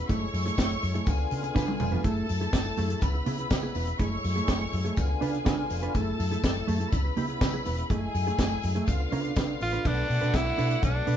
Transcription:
Already playing: E4
0.09 F#1 A2 G#3 A3 E4 G#4 C#5 C#6, kick, closed hi-hat, tambourine
0.22 muted clean electric guitar stroke
0.34 F#2, muted clean electric guitar stroke, open hi-hat, tambourine
0.46 A3 E4 G#4, closed hi-hat
0.58 F#1 A3 E4 G#4, kick, snare, closed hi-hat, tambourine
0.70 muted clean electric guitar stroke
0.82 F#2, muted clean electric guitar stroke, open hi-hat, tambourine
0.94 A3 E4 G#4, closed hi-hat
1.06 C#2 D3 B3 F4 G#4 G#5, muted clean electric guitar stroke, kick, closed hi-hat, tambourine
1.18 muted clean electric guitar stroke
1.31 C#3, open hi-hat
1.43 muted clean electric guitar stroke, closed hi-hat
1.55 C#3 D4 F4 B4, kick, snare, tambourine
1.68 muted clean electric guitar stroke, high tom
1.80 F1, muted clean electric guitar stroke, mid tom, tambourine
1.92 D4 F4 B4, floor tom
2.04 F#1 A2 A3 E4 G#4 A4 A5, kick, closed hi-hat, tambourine
2.29 F#2, open hi-hat, tambourine
2.41 A3 E4 G#4, closed hi-hat
2.53 F#1, muted clean electric guitar stroke, kick, snare, closed hi-hat, tambourine
2.65 muted clean electric guitar stroke
2.77 F#2 A3 E4 G#4, open hi-hat, tambourine
2.89 A3 E4 G#4, closed hi-hat
3.01 C#2 C#3 B3 B4 B5, muted clean electric guitar stroke, kick, closed hi-hat, tambourine
3.14 muted clean electric guitar stroke
3.26 C#3 B3 E4 G#4, open hi-hat, tambourine
3.38 B3 E4 G#4, closed hi-hat
3.50 C#3, kick, snare, closed hi-hat, tambourine
3.63 B3 E4 G#4
3.75 E1 B3 E4 B4, open hi-hat, tambourine
3.87 muted clean electric guitar stroke, closed hi-hat
3.99 F#1 A2 G#3 A3 E4 G#4 C#5 C#6, kick, closed hi-hat, tambourine
4.12 muted clean electric guitar stroke
4.24 F#2, muted clean electric guitar stroke, open hi-hat, tambourine
4.36 A3 E4 G#4, closed hi-hat
4.48 F#1 A3 E4 G#4, kick, snare, closed hi-hat, tambourine
4.60 muted clean electric guitar stroke
4.72 F#2, muted clean electric guitar stroke, open hi-hat, tambourine
4.85 A3 E4 G#4, closed hi-hat
4.96 C#2 D3 B3 F4 G#4 G#5, kick, closed hi-hat, tambourine
5.09 muted clean electric guitar stroke
5.21 C#3 D4 F4 B4, open hi-hat, tambourine
5.33 muted clean electric guitar stroke, closed hi-hat
5.45 C#3 D4 F4 B4, kick, snare, closed hi-hat, tambourine
5.58 muted clean electric guitar stroke
5.70 F1, muted clean electric guitar stroke, open hi-hat, tambourine
5.83 D4 F4 B4, closed hi-hat
5.94 F#1 A2 A3 E4 G#4 A4 A5, kick, closed hi-hat, tambourine
6.19 F#2, muted clean electric guitar stroke, open hi-hat, tambourine
6.31 A3 E4 G#4, closed hi-hat
6.44 F#1, kick, snare, closed hi-hat, tambourine
6.56 muted clean electric guitar stroke
6.68 F#2 A3 E4 G#4, open hi-hat, tambourine
6.80 A3 E4 G#4, closed hi-hat
6.92 C#2 C#3 B3 B4 B5, kick, closed hi-hat, tambourine
7.05 muted clean electric guitar stroke
7.17 C#3 B3 E4 G#4, open hi-hat
7.29 B3 E4 G#4, closed hi-hat
7.41 C#3, muted clean electric guitar stroke, kick, snare, closed hi-hat, tambourine
7.54 B3 E4 G#4
7.65 E1 B3 E4 B4, open hi-hat, tambourine
7.78 muted clean electric guitar stroke, closed hi-hat
7.89 F#1 A2 G#3 A3 E4 G#4 G#5, kick, closed hi-hat
8.03 muted clean electric guitar stroke
8.14 F#2, muted clean electric guitar stroke, open hi-hat, tambourine
8.27 A3 E4 G#4, closed hi-hat
8.38 F#1 A3 E4 G#4, kick, snare, closed hi-hat, tambourine
8.52 muted clean electric guitar stroke
8.62 F#2, muted clean electric guitar stroke, open hi-hat, tambourine
8.75 A3 E4 G#4, closed hi-hat
8.87 C#2 D3 B3 F4 F5, kick, closed hi-hat, tambourine
9.00 muted clean electric guitar stroke
9.12 C#3 D4 F4 B4, open hi-hat, tambourine
9.24 muted clean electric guitar stroke, closed hi-hat
9.36 C#3 D4 F4 B4, kick, snare, closed hi-hat, tambourine
9.48 muted clean electric guitar stroke
9.60 A1 F4, muted clean electric guitar stroke, open hi-hat, tambourine
9.72 D4 F4 B4, closed hi-hat
9.85 B1 B2 A3 D4 F#4 A4 B4 F#5, kick, crash
10.09 B2, muted clean electric guitar stroke, open hi-hat
10.21 B2 D4 A4 B4, snare, closed hi-hat
10.34 B1 E4, kick, snare, closed hi-hat
10.47 muted clean electric guitar stroke
10.58 B2 D4 A4 B4, open hi-hat
10.71 muted clean electric guitar stroke, closed hi-hat
10.83 B1 D4, kick, closed hi-hat
10.94 muted clean electric guitar stroke
11.07 B2 D4 A4 B4, open hi-hat

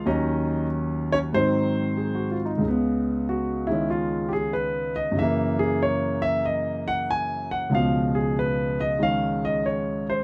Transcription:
0.06 D#2 D#3 F#3 C#4 D#4 D#5
1.12 C#4 C#5
1.33 G#2 D#3 F#3 C4 C5
1.97 G#4
2.15 F#4
2.31 F4
2.45 D#4
2.57 C#2 C#3
2.68 B3
3.29 F#4
3.67 D#3 G#3 E4
3.71 C#4
3.90 F4
4.29 G4
4.33 G#4
4.53 B4
4.96 D#5
5.12 F#2 C#3
5.19 E3 A#3 E5
5.59 G#4
5.83 C#5
6.22 E5
6.46 D#5
6.88 F#5
7.11 G#5
7.51 F#5
7.70 C#2 C#3 F3
7.75 B2 F5
8.15 G#4
8.39 B4
8.81 D#5
8.99 D#3 G#3 C#4 F5
9.45 D#5
9.66 C#5
10.10 C5

